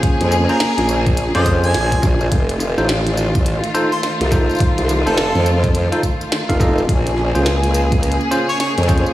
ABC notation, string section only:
X:1
M:4/4
L:1/8
Q:"Swing 16ths" 1/4=105
K:Bbm
V:1 name="String section"
[D,B,A]8 | [E,=A,F]8- | [E,=A,F]8 | [D,B,A]8 |]